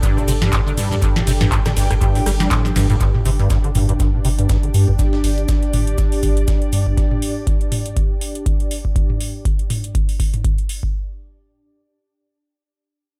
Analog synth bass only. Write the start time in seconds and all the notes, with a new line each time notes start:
0.28 G1
0.77 G2
1.27 G1
1.77 G1
2.26 G1
2.76 G1
3.25 G1
3.75 G1
4.25 G1
4.74 G2
5.24 G1
5.73 G1
6.23 G1
6.73 G2